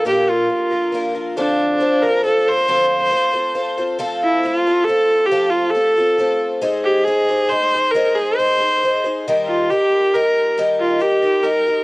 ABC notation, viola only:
X:1
M:3/4
L:1/8
Q:1/4=137
K:F
V:1 name="Viola"
G F3 z2 | D3 B A c- | c4- c z | z E F2 A2 |
G F A3 z | z G _A2 c2 | B _A c3 z | z F G2 B2 |
z F G2 B2 |]